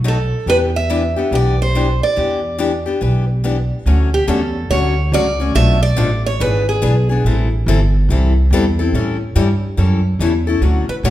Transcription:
Already playing: upright bass B1
0.04 steel-string acoustic guitar B2 F#3 A3 D#4 F#4 A4
0.46 upright bass E2, steel-string acoustic guitar E3 B3 D4 G4 B4
0.76 steel-string acoustic guitar E5
0.90 steel-string acoustic guitar E3 B3 D4 G4
1.16 steel-string acoustic guitar B3 D4 G4
1.31 upright bass B1, steel-string acoustic guitar E3 B3 D4 G4
1.35 steel-string acoustic guitar D5
1.62 steel-string acoustic guitar C5
1.75 steel-string acoustic guitar E3 B3 D4 G4
2.03 steel-string acoustic guitar D5
2.16 upright bass E2, steel-string acoustic guitar E3 B3 D4 G4
2.58 steel-string acoustic guitar E3 B3 D4 G4
2.86 steel-string acoustic guitar B3 D4 G4
3.01 upright bass B1, steel-string acoustic guitar E3 B3 D4 G4
3.44 steel-string acoustic guitar E3 B3 D4 G4
3.86 upright bass D2, steel-string acoustic guitar D3 F#3 A3 C#4 F#4
4.14 steel-string acoustic guitar G4
4.28 upright bass E2, steel-string acoustic guitar D3 F#3 A3 C#4 F#4 A4
4.70 upright bass D2, steel-string acoustic guitar D3 F#3 A3 C#4 F#4 C#5
5.12 upright bass C#2, steel-string acoustic guitar D3 F#3 A3 C#4 F#4 D5
5.40 steel-string acoustic guitar A3 C#4 F#4
5.55 upright bass B1, steel-string acoustic guitar B2 F3 A3 D4 A4 E5
5.83 steel-string acoustic guitar D5
5.96 upright bass A1, steel-string acoustic guitar B2 F3 A3 D4 A4
6.26 steel-string acoustic guitar C#5
6.40 upright bass G#1, steel-string acoustic guitar E3 B3 D4 G#4 B4
6.69 steel-string acoustic guitar G#4
6.82 upright bass B1, steel-string acoustic guitar E3 B3 D4 G#4
7.09 steel-string acoustic guitar B3 D4 G#4
7.24 upright bass A1, steel-string acoustic guitar E3 G3 C4 E4 A4
7.66 upright bass G1, steel-string acoustic guitar E3 G3 C4 E4 A4
8.09 upright bass C2, steel-string acoustic guitar E3 G3 C4 E4 A4
8.50 upright bass E2, steel-string acoustic guitar E3 G3 C4 E4 A4
8.79 steel-string acoustic guitar C4 E4 A4
8.93 upright bass A2, steel-string acoustic guitar E3 G3 C#4 E4 A4
9.35 upright bass G2, steel-string acoustic guitar E3 G3 C#4 E4 A4
9.77 upright bass F#2, steel-string acoustic guitar E3 G3 C#4 E4 A4
10.19 upright bass E2, steel-string acoustic guitar E3 G3 C#4 E4 A4
10.47 steel-string acoustic guitar C#4 E4 A4
10.61 upright bass D2, steel-string acoustic guitar D3 F#3 A3 C#4 F#4
10.88 steel-string acoustic guitar B4, muted upright bass stroke
11.03 upright bass A2, steel-string acoustic guitar D3 F#3 A3 C#4 F#4 C#5

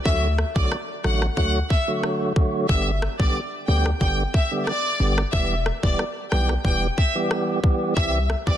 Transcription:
0.05 808-style bass D2, tonewheel organ D3 F#3 A3 F#4, violin section E5, kick
0.38 cross-stick
0.55 808-style bass B1, tonewheel organ D3 F#3 A3 F#4, violin section D5, kick
0.72 cross-stick
1.04 808-style bass A1, tonewheel organ D3 F#3 A3 F#4, violin section F#5, cross-stick
1.22 cross-stick
1.37 808-style bass D2, tonewheel organ D3 F#3 A3 F#4, violin section F#5, kick
1.70 violin section E5, kick
1.88 tonewheel organ D3 F#3 A3 F#4
2.03 cross-stick
2.36 tonewheel organ D3 F#3 A3 F#4, kick
2.69 808-style bass G1, tonewheel organ D3 G3 B3 G4, violin section E5, kick
3.02 cross-stick
3.19 808-style bass B1, tonewheel organ D3 G3 B3 G4, violin section D5, kick
3.68 808-style bass D2, tonewheel organ D3 G3 B3 G4, violin section G5
3.86 cross-stick
4.01 808-style bass G1, tonewheel organ D3 G3 B3 G4, violin section G5, kick
4.34 violin section E5, kick
4.51 tonewheel organ D3 G3 B3 G4
4.67 violin section D5, cross-stick
5.00 808-style bass G1, tonewheel organ D3 G3 B3 G4
5.18 cross-stick
5.33 808-style bass E1, tonewheel organ E3 G3 B3 G4, violin section E5, kick
5.66 cross-stick
5.83 808-style bass E1, tonewheel organ E3 G3 B3 G4, violin section D5, kick
5.99 cross-stick
6.32 808-style bass B1, tonewheel organ E3 G3 B3 G4, violin section G5, cross-stick
6.49 cross-stick
6.65 808-style bass E1, tonewheel organ E3 G3 B3 G4, violin section G5, kick
6.98 violin section E5, kick
7.15 tonewheel organ E3 G3 B3 G4
7.31 cross-stick
7.63 tonewheel organ E3 G3 B3 G4, kick
7.97 808-style bass C2, tonewheel organ E3 G3 C4 G4, violin section E5, kick
8.30 cross-stick
8.47 808-style bass C2, tonewheel organ E3 G3 C4 G4, violin section D5, kick

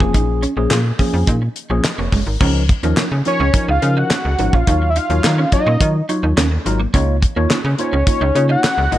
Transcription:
Already playing: tine electric piano F3 A#3 C#4 G#4
0.00 fm bass F1, clean electric guitar A#3, kick
0.14 fm bass A#1, clean electric guitar D#4, kick, closed hi-hat
0.42 clean electric guitar C#4, closed hi-hat
0.57 fm bass A#1, tine electric piano F3 A#3 C#4 G#4, muted clean electric guitar stroke
0.71 fm bass A#2, snare, clap, closed hi-hat
0.99 tine electric piano F3 A#3 C#4 G#4, clean electric guitar C#4, kick, open hi-hat
1.13 fm bass F2
1.27 fm bass A#2, clean electric guitar D#4, kick, closed hi-hat
1.42 muted clean electric guitar stroke
1.56 closed hi-hat
1.70 fm bass A#1, tine electric piano F3 A#3 C#4 G#4, clean electric guitar C#4
1.84 tine electric piano D#5, muted clean electric guitar stroke, snare, clap, closed hi-hat
1.98 fm bass F1, clean electric guitar A#3, tine electric piano C#5
2.12 fm bass F#1, clean electric guitar G#3, kick, open hi-hat
2.27 fm bass G#1, tine electric piano A#4
2.41 fm bass C#2, tine electric piano F3 C#4 D#4 A#4, clean electric guitar C#4, kick, crash
2.69 muted clean electric guitar stroke, kick, closed hi-hat
2.83 fm bass D#2, tine electric piano F3 C#4 D#4 A#4, clean electric guitar A#3, closed hi-hat
2.97 clean electric guitar C#4, snare, clap, closed hi-hat
3.12 fm bass C#3, muted clean electric guitar stroke
3.25 tine electric piano F3 C#4 D#4 A#4, analog synth lead C#5, closed hi-hat
3.40 fm bass C#2, clean electric guitar C#4
3.54 tine electric piano F3 C#4 D#4 A#4, kick, closed hi-hat
3.68 fm bass C#2, clean electric guitar D#4, analog synth lead F5
3.82 fm bass C#3, tine electric piano F3 C#4 D#4 A#4, muted clean electric guitar stroke, closed hi-hat
3.97 clean electric guitar D#4, analog synth lead F#5
4.10 clean electric guitar C#4, snare, clap, closed hi-hat
4.25 fm bass C#2
4.39 fm bass G#1, tine electric piano F3 C#4 D#4 A#4, muted clean electric guitar stroke, closed hi-hat
4.53 fm bass A#1, clean electric guitar C#4, analog synth lead F5, kick
4.67 fm bass D#2, tine electric piano F#3 D#4 F4 C#5, clean electric guitar D#4, kick, closed hi-hat
4.82 muted clean electric guitar stroke
4.90 analog synth lead E5
4.96 clean electric guitar D#4, analog synth lead F5, closed hi-hat
5.09 fm bass D#2, tine electric piano F#3 D#4 F4 C#5, closed hi-hat
5.24 fm bass D#3, snare, clap, closed hi-hat
5.38 clean electric guitar C#4
5.52 tine electric piano F#3 D#4 F4 C#5, analog synth lead D#5, muted clean electric guitar stroke, kick, closed hi-hat
5.66 fm bass A#2, clean electric guitar C#4
5.80 fm bass D#3, tine electric piano F#3 D#4 F4 C#5, muted clean electric guitar stroke, kick, closed hi-hat
6.09 tine electric piano F#3 D#4 F4 C#5, clean electric guitar D#4, closed hi-hat
6.23 fm bass D#2, clean electric guitar D#4
6.37 fm bass D#2, clean electric guitar C#4, snare, clap, closed hi-hat
6.51 muted clean electric guitar stroke
6.66 fm bass G#1, tine electric piano F#3 D#4 F4 A#4, closed hi-hat
6.80 clean electric guitar A#3
6.94 fm bass C#2, tine electric piano A#3 D#4 F4 C#5, clean electric guitar C#4, kick, closed hi-hat
7.22 muted clean electric guitar stroke, kick, closed hi-hat
7.36 fm bass D#2, tine electric piano A#3 D#4 F4 C#5, clean electric guitar A#3
7.50 fm bass C#3, clean electric guitar C#4, snare, clap, closed hi-hat
7.64 fm bass C#3, muted clean electric guitar stroke
7.78 tine electric piano A#3 D#4 F4 C5, analog synth lead C#5, closed hi-hat
7.93 fm bass C#2, clean electric guitar C#4
8.07 tine electric piano A#3 D#4 F4 C#5, kick, closed hi-hat
8.21 fm bass C#2, clean electric guitar D#4
8.35 fm bass C#3, tine electric piano A#3 D#4 F4 C#5, muted clean electric guitar stroke, closed hi-hat
8.49 clean electric guitar D#4, analog synth lead F#5
8.63 clean electric guitar C#4, snare, clap, closed hi-hat
8.78 fm bass C#2
8.92 fm bass G#1, tine electric piano A#3 D#4 F4 D#5, muted clean electric guitar stroke, closed hi-hat

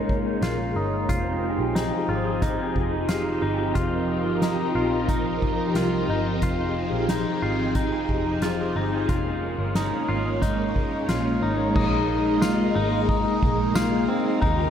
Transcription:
Already playing: picked electric bass G#1, string machine G#3 A#3 C#4, clean electric guitar D#4
0.09 kick
0.42 picked electric bass A#1, clean electric guitar F4, snare, closed hi-hat
0.75 picked electric bass G1, clean electric guitar D#4
1.09 picked electric bass F1, string machine F3 C4 D#4 G4 G#4, clean electric guitar F4, kick, closed hi-hat
1.58 picked electric bass A#1
1.75 clean electric guitar D#4, snare, closed hi-hat
2.09 picked electric bass G#1, clean electric guitar F4
2.42 clean electric guitar D#4, kick, closed hi-hat
2.76 picked electric bass F1, kick
3.09 clean electric guitar F4, snare, closed hi-hat
3.42 picked electric bass G1, clean electric guitar D#4
3.75 picked electric bass F1, clean electric guitar F4, string machine A#4, kick, closed hi-hat
4.25 picked electric bass G1
4.42 clean electric guitar D#4, snare, closed hi-hat
4.75 picked electric bass A#1, clean electric guitar F4
5.09 clean electric guitar D#4, kick, closed hi-hat
5.42 kick
5.75 picked electric bass C2, clean electric guitar F4, snare, closed hi-hat
6.09 picked electric bass G1, clean electric guitar D#4
6.42 picked electric bass F1, clean electric guitar F4, string machine G#4, kick, closed hi-hat
6.92 picked electric bass A#1
7.09 clean electric guitar D#4, snare, closed hi-hat
7.42 picked electric bass G#1, clean electric guitar F4
7.75 clean electric guitar D#4, kick, closed hi-hat
8.09 picked electric bass F1, kick
8.42 clean electric guitar F4, snare, closed hi-hat
8.76 picked electric bass G1, clean electric guitar D#4
9.09 picked electric bass F1, string machine G#3 A#3 C#4, clean electric guitar F4, kick, closed hi-hat
9.59 picked electric bass G1
9.75 clean electric guitar D#4, snare, closed hi-hat
10.08 picked electric bass G#1, clean electric guitar F4
10.42 clean electric guitar D#4, kick, closed hi-hat
10.76 kick
11.09 picked electric bass A#1, clean electric guitar F4, snare, closed hi-hat
11.42 picked electric bass G#1, clean electric guitar D#4
11.76 picked electric bass A#1, string machine G#3 A#3 D#4, clean electric guitar D#4, kick, crash
12.42 clean electric guitar F4, snare, tambourine
12.75 picked electric bass G#1, clean electric guitar D#4
13.09 clean electric guitar D#4, kick, ride
13.43 picked electric bass A#1, kick
13.75 clean electric guitar F4, snare, tambourine
14.09 clean electric guitar C4
14.42 picked electric bass D#2, string machine C#3 D#3 F4 G4, clean electric guitar D#4, kick, ride

